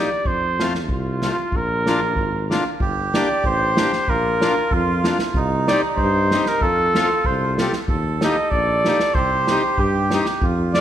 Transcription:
0.00 0.28 D5 medium
0.25 0.91 F2 medium
0.25 0.65 C5 medium
0.25 kick medium
0.60 0.73 A3 medium
0.60 0.73 C4 medium
0.60 0.73 F4 medium
0.60 snare medium
0.75 snare soft
0.89 1.31 C2 medium
0.89 1.58 F4 medium
0.89 kick medium
1.22 1.37 A3 soft
1.22 1.37 C4 soft
1.22 1.37 F4 medium
1.22 snare medium
1.52 2.17 A#1 medium
1.52 kick medium
1.56 2.52 A#4 medium
1.86 2.00 A#3 medium
1.86 2.00 D4 medium
1.86 2.00 F4 medium
1.86 snare medium
2.16 2.58 G#1 medium
2.16 kick medium
2.50 2.64 A#3 medium
2.50 2.64 D4 medium
2.50 2.64 F4 medium
2.50 snare medium
2.80 3.22 G1 medium
2.80 4.12 G4 medium
2.80 kick medium
3.14 3.28 A#3 medium
3.14 3.28 D4 medium
3.14 3.28 G4 medium
3.14 3.42 D5 medium
3.14 snare medium
3.44 3.85 A1 medium
3.44 4.11 C5 medium
3.44 kick medium
3.77 3.91 A#3 soft
3.77 3.91 D4 soft
3.77 3.92 G4 medium
3.77 snare medium
3.93 snare soft
4.08 4.49 A#1 medium
4.08 5.38 F4 medium
4.08 4.75 A#4 medium
4.08 kick medium
4.41 4.55 A#3 medium
4.41 4.55 D4 medium
4.41 4.55 F4 medium
4.41 snare medium
4.71 5.12 F2 loud
4.71 5.21 F4 medium
4.71 kick medium
5.04 5.18 A#3 soft
5.04 5.18 D4 soft
5.04 5.18 F4 medium
5.04 snare medium
5.19 snare medium
5.34 5.75 C2 medium
5.34 6.66 D#4 loud
5.34 kick medium
5.68 5.81 C4 medium
5.68 5.82 D#4 medium
5.68 5.82 G4 medium
5.68 5.81 D5 medium
5.68 snare medium
5.97 6.39 G2 loud
5.97 6.49 C5 medium
5.97 kick medium
6.31 6.45 C4 medium
6.31 6.45 D#4 soft
6.31 6.45 G4 medium
6.31 snare medium
6.46 6.64 A#4 medium
6.46 snare medium
6.61 7.02 F2 medium
6.61 7.54 F4 medium
6.61 7.28 A4 loud
6.61 kick medium
6.95 7.09 C4 medium
6.95 7.09 F4 medium
6.95 7.09 A4 medium
6.95 snare medium
7.25 7.66 C2 medium
7.25 7.59 C5 medium
7.25 kick medium
7.58 7.72 C4 medium
7.58 7.72 F4 medium
7.58 7.74 G4 medium
7.58 7.72 A4 soft
7.58 snare medium
7.73 snare medium
7.88 8.29 D#2 medium
7.88 9.19 A4 medium
7.88 kick medium
8.21 8.36 A#3 medium
8.21 8.36 D#4 medium
8.21 8.36 G4 medium
8.21 8.52 D#5 medium
8.21 snare medium
8.51 8.93 A#1 medium
8.51 9.16 D5 medium
8.51 kick medium
8.85 8.99 A#3 soft
8.85 8.99 D#4 soft
8.85 8.99 G4 medium
8.85 snare medium
9.00 snare medium
9.14 9.56 C2 medium
9.14 10.46 G4 medium
9.14 9.81 C5 medium
9.14 kick medium
9.47 9.62 C4 medium
9.47 9.63 D#4 medium
9.47 9.63 G4 medium
9.47 snare medium
9.77 10.19 G2 medium
9.77 10.28 G4 medium
9.77 kick medium
10.10 10.26 C4 medium
10.10 10.26 D#4 soft
10.10 10.26 G4 medium
10.10 snare medium
10.26 snare soft
10.42 10.81 F2 medium
10.42 10.81 F4 medium
10.42 kick medium
10.74 10.81 C4 medium
10.74 10.81 F4 medium
10.74 10.81 A4 medium
10.74 10.81 D5 loud
10.74 snare medium

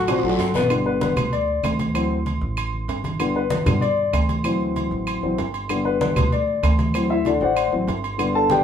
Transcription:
0.00 0.21 A1 loud
0.00 0.55 F#4 loud
0.07 0.21 C3 medium
0.07 0.21 C4 medium
0.07 0.22 C5 medium
0.07 high conga soft
0.07 high timbale loud
0.07 low agogo loud
0.07 long guiro medium
0.07 claves medium
0.19 high timbale medium
0.23 0.37 A1 medium
0.23 0.49 F#3 medium
0.23 0.49 F#4 medium
0.23 0.50 A4 medium
0.23 high conga soft
0.29 high timbale medium
0.39 1.11 G1 loud
0.39 high conga soft
0.39 low timbale medium
0.39 low agogo medium
0.39 short guiro medium
0.54 0.68 B2 medium
0.54 0.68 B3 medium
0.54 0.68 B4 loud
0.54 high conga medium
0.54 low agogo medium
0.54 short guiro medium
0.60 low timbale medium
0.70 1.14 D3 medium
0.70 1.15 G3 medium
0.70 1.15 B3 medium
0.70 high conga soft
0.70 low agogo loud
0.70 claves medium
0.86 1.00 B4 medium
0.86 high conga soft
1.01 1.30 B4 medium
1.01 high conga loud
1.01 low timbale medium
1.01 low agogo medium
1.17 1.60 D2 loud
1.17 high conga soft
1.17 low conga medium
1.17 low agogo loud
1.17 claves medium
1.33 1.61 D5 medium
1.33 high conga soft
1.33 low agogo medium
1.48 high conga soft
1.63 2.36 D2 loud
1.63 high conga medium
1.63 low timbale medium
1.63 low agogo loud
1.63 claves medium
1.79 high conga medium
1.79 low agogo medium
1.94 2.15 E3 medium
1.94 2.16 F#3 soft
1.94 2.16 C4 medium
1.94 high conga soft
1.94 low agogo loud
1.94 claves medium
2.11 high conga soft
2.26 high conga medium
2.26 low timbale medium
2.26 low agogo medium
2.41 2.85 A1 loud
2.41 high conga soft
2.57 high conga soft
2.57 low agogo loud
2.57 claves medium
2.73 high conga soft
2.88 3.61 G1 medium
2.88 high conga soft
2.88 low timbale medium
2.88 low agogo medium
3.04 high conga medium
3.04 low agogo medium
3.19 3.40 D3 medium
3.19 3.41 G3 medium
3.19 3.41 B3 medium
3.19 high conga soft
3.19 low agogo loud
3.19 claves medium
3.35 3.49 B4 medium
3.35 high conga soft
3.50 3.80 B4 medium
3.50 high conga loud
3.50 low timbale medium
3.50 low agogo medium
3.66 4.10 G2 loud
3.66 3.80 D3 soft
3.66 3.80 G3 soft
3.66 3.81 B3 medium
3.66 high conga soft
3.66 low conga medium
3.66 low agogo loud
3.66 claves medium
3.81 4.11 D5 loud
3.81 high conga soft
3.81 low agogo medium
3.98 high conga soft
4.13 4.86 D2 medium
4.13 high conga medium
4.13 low timbale medium
4.13 low agogo loud
4.13 claves medium
4.29 high conga medium
4.29 low agogo medium
4.44 5.21 E3 medium
4.44 5.22 F#3 medium
4.44 5.22 C4 medium
4.44 high conga soft
4.44 low agogo loud
4.44 claves medium
4.61 high conga soft
4.76 high conga medium
4.76 low timbale medium
4.76 low agogo medium
4.91 5.20 A1 medium
4.91 high conga soft
5.07 high conga soft
5.07 low agogo medium
5.07 claves medium
5.22 5.37 A1 medium
5.22 5.37 E3 medium
5.22 5.37 F#3 soft
5.22 5.37 C4 medium
5.22 high conga soft
5.38 6.11 G1 medium
5.38 high conga soft
5.38 low timbale medium
5.38 low agogo medium
5.54 low agogo medium
5.69 6.14 D3 medium
5.69 6.14 G3 medium
5.69 6.15 B3 medium
5.69 high conga soft
5.69 low agogo loud
5.69 claves medium
5.85 6.00 B4 medium
5.85 high conga soft
6.01 6.30 B4 medium
6.01 high conga loud
6.01 low timbale medium
6.01 low agogo medium
6.16 6.60 D2 loud
6.16 high conga soft
6.16 low conga medium
6.16 low agogo loud
6.16 claves medium
6.32 6.61 D5 medium
6.32 high conga soft
6.32 low agogo medium
6.48 high conga soft
6.63 7.36 D2 loud
6.63 high conga medium
6.63 low timbale medium
6.63 low agogo loud
6.63 claves medium
6.79 high conga medium
6.79 low agogo medium
6.94 7.15 E3 medium
6.94 7.15 F#3 medium
6.94 7.15 C4 medium
6.94 high conga soft
6.94 low agogo loud
6.94 claves medium
7.10 7.26 E4 medium
7.10 7.25 E5 loud
7.10 high conga soft
7.25 7.41 D4 medium
7.25 7.41 F#4 medium
7.25 7.41 A4 medium
7.25 7.41 D5 medium
7.25 high conga medium
7.25 low timbale medium
7.25 low agogo medium
7.41 7.70 A1 loud
7.41 7.71 F#4 medium
7.41 7.71 C5 medium
7.41 7.71 D5 medium
7.41 7.71 F#5 medium
7.41 high conga soft
7.56 high conga soft
7.56 low agogo loud
7.56 claves medium
7.72 7.87 A1 medium
7.72 7.87 E3 medium
7.72 7.87 F#3 soft
7.72 7.87 C4 medium
7.72 high conga soft
7.87 8.60 G1 loud
7.87 high conga soft
7.87 low timbale medium
7.87 low agogo medium
8.04 low agogo medium
8.18 8.63 D3 medium
8.18 8.63 G3 soft
8.18 8.64 B3 medium
8.18 high conga soft
8.18 low agogo loud
8.18 claves medium
8.34 8.50 A4 medium
8.34 8.50 A5 loud
8.34 high conga soft
8.50 8.64 G4 medium
8.50 8.64 B4 medium
8.50 8.64 D5 medium
8.50 8.64 G5 loud
8.50 high conga loud
8.50 low timbale medium
8.50 low agogo medium

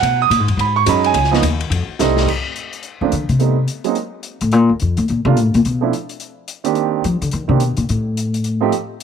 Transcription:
0.00 0.29 B2 medium
0.00 0.20 F#5 medium
0.00 ride medium
0.22 0.57 D#6 loud
0.30 0.40 A#2 medium
0.30 hi-hat pedal soft
0.30 ride medium
0.40 0.47 G#2 medium
0.48 0.56 F#2 medium
0.48 ride soft
0.57 0.85 G#2 medium
0.57 0.77 B5 medium
0.57 ride medium
0.76 0.87 C#6 loud
0.86 1.13 F#2 medium
0.86 1.15 F#3 medium
0.86 1.15 G#3 medium
0.86 1.15 C#4 medium
0.86 1.16 D#4 medium
0.86 1.05 B5 medium
0.86 hi-hat pedal medium
0.86 ride medium
1.04 1.31 G#5 loud
1.04 ride soft
1.14 1.41 C#2 medium
1.14 ride medium
1.24 snare soft
1.31 1.42 F3 medium
1.31 1.42 A#3 medium
1.31 1.42 B3 medium
1.31 1.42 D#4 medium
1.31 snare soft
1.42 1.69 D#2 medium
1.42 hi-hat pedal medium
1.42 ride medium
1.61 ride soft
1.70 1.87 F2 medium
1.70 ride medium
1.88 muted upright bass stroke soft
1.99 2.27 C2 medium
1.99 2.28 G3 medium
1.99 2.28 A3 medium
1.99 2.28 C4 medium
1.99 2.28 D#4 medium
1.99 snare medium
1.99 hi-hat pedal medium
2.17 snare medium
2.28 kick medium
2.28 crash medium
2.56 closed hi-hat soft
2.73 closed hi-hat soft
2.83 closed hi-hat soft
3.01 3.11 D#3 medium
3.01 3.11 F3 soft
3.01 3.11 A3 soft
3.01 3.11 A#3 soft
3.01 3.11 C4 medium
3.01 3.12 D4 medium
3.12 3.28 D3 medium
3.12 closed hi-hat soft
3.29 3.65 C3 medium
3.29 closed hi-hat soft
3.39 3.55 G3 soft
3.39 3.55 A3 soft
3.39 3.55 B3 soft
3.39 3.56 C4 soft
3.39 3.56 D#4 soft
3.39 closed hi-hat soft
3.68 closed hi-hat soft
3.84 3.94 F#3 medium
3.84 3.94 G#3 medium
3.84 3.95 A#3 medium
3.84 3.95 C4 soft
3.84 3.95 D#4 medium
3.84 closed hi-hat soft
3.95 closed hi-hat soft
4.23 closed hi-hat soft
4.41 4.52 A2 medium
4.41 closed hi-hat soft
4.52 4.69 A#2 medium
4.52 closed hi-hat soft
4.69 4.80 D2 medium
4.80 4.97 F2 medium
4.80 closed hi-hat soft
4.97 5.08 A2 medium
4.97 closed hi-hat soft
5.08 5.24 A#2 medium
5.08 closed hi-hat soft
5.25 5.39 C3 loud
5.25 5.35 G3 medium
5.25 5.35 A3 soft
5.25 5.36 A#3 medium
5.25 5.36 D4 medium
5.25 5.36 F4 medium
5.37 5.54 A2 medium
5.37 closed hi-hat soft
5.54 5.64 A#2 medium
5.54 closed hi-hat soft
5.65 5.91 B2 medium
5.65 closed hi-hat soft
5.81 5.91 F3 soft
5.81 5.91 A3 soft
5.81 5.91 C4 soft
5.81 5.92 D4 soft
5.81 5.92 E4 medium
5.93 closed hi-hat soft
6.09 closed hi-hat soft
6.20 closed hi-hat soft
6.48 closed hi-hat medium
6.64 7.01 D#3 medium
6.64 7.01 A#3 medium
6.64 7.02 C4 medium
6.64 7.02 D4 medium
6.64 7.02 G4 medium
6.64 closed hi-hat soft
6.75 closed hi-hat soft
7.04 7.21 F3 medium
7.04 closed hi-hat soft
7.21 7.32 D3 medium
7.21 closed hi-hat soft
7.31 7.48 D#3 medium
7.31 closed hi-hat soft
7.48 7.62 C3 medium
7.48 7.58 D#3 medium
7.48 7.59 A#3 soft
7.48 7.59 C4 medium
7.48 7.59 D4 medium
7.48 7.59 G4 medium
7.60 7.77 B2 medium
7.60 closed hi-hat medium
7.77 7.88 A#2 medium
7.77 closed hi-hat soft
7.89 8.69 A2 medium
7.89 closed hi-hat soft
8.17 closed hi-hat soft
8.34 closed hi-hat soft
8.44 closed hi-hat soft
8.61 8.71 F3 medium
8.61 8.71 A3 medium
8.61 8.71 C4 medium
8.61 8.71 D#4 medium
8.61 8.72 G4 medium
8.72 closed hi-hat soft

